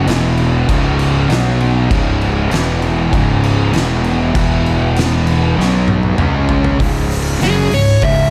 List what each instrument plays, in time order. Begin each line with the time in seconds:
0.06 fingered electric bass E1, distorted electric guitar E2 B2 E3, snare, crash
0.37 crash
0.68 fingered electric bass C#1, distorted electric guitar C#2 G#2 C#3, kick, crash
0.99 crash
1.29 fingered electric bass B1, distorted electric guitar B2 F#3 B3, snare, crash
1.60 crash
1.91 fingered electric bass C#1, distorted electric guitar C#2 G#2 C#3, kick, crash
2.21 crash
2.51 fingered electric bass E1, distorted electric guitar E2 B2 E3, snare, crash
2.82 crash
3.12 fingered electric bass C#1, distorted electric guitar C#2 G#2 C#3, kick, crash
3.44 crash
3.73 fingered electric bass E1, distorted electric guitar E2 B2 E3, snare, crash
4.04 crash
4.35 fingered electric bass E1, distorted electric guitar E2 B2 E3, kick, crash
4.66 crash
4.96 snare, crash
5.27 crash
5.57 fingered electric bass B1, distorted electric guitar B2 F#3 B3, snare
5.88 high tom
6.03 high tom
6.18 fingered electric bass C#2, distorted electric guitar C#3 G#3 C#4, mid tom
6.49 floor tom
6.64 floor tom
6.80 fingered electric bass C#1, distorted electric guitar C#2 G#2 C#3, kick, open hi-hat
7.10 open hi-hat
7.41 fingered electric bass F#1, distorted electric guitar F#2 C#3 F#3, lead electric guitar G#4, snare, open hi-hat
7.71 fingered electric bass C#1, distorted electric guitar C#2 G#2, lead electric guitar C#5, open hi-hat
8.02 fingered electric bass C#1, distorted electric guitar C#2 G#2 C#3, lead electric guitar E5, kick, open hi-hat